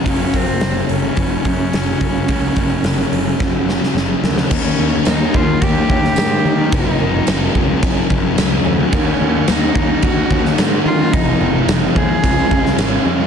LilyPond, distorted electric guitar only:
\new Staff \with { instrumentName = "Distorted electric guitar" } { \clef bass \time 4/4 \key ges \lydian \tempo 4 = 109 <ges, des ges>2~ <ges, des ges>8 <ges, des ges>8 <ges, des ges>4 | <ges, des ges>2~ <ges, des ges>8 <ges, des ges>8 <ges, des ges>4 | <ees bes ees'>8 <ees bes ees'>16 <bes ees'>16 <ees bes ees'>8 <ees bes ees'>16 <bes ees'>8 <bes ees'>16 <ees bes ees'>16 <bes ees'>16 <ees bes ees'>16 <bes ees'>8 <bes ees'>16 | <ges, des ges>8 <ges, des ges>16 <des ges>16 <ges, des ges>8 <ges, des ges>16 <des ges>8 <des ges>16 <ges, des ges>16 <des ges>16 <ges, des ges>16 <des ges>8 <des ges>16 |
<ees bes ees'>8 <ees bes ees'>16 <bes ees'>16 <ees bes ees'>8 <ees bes ees'>16 <bes ees'>8 <bes ees'>16 <ees bes ees'>16 <bes ees'>16 <ees bes ees'>16 <bes ees'>8 <bes ees'>16 | <f, c f>8 <f, c f>16 <c f>16 <f, c f>8 <f, c f>16 <c f>16 <des aes des'>16 <aes des'>16 <des aes des'>16 <aes des'>16 <des aes des'>16 <aes des'>8 <aes des'>16 | }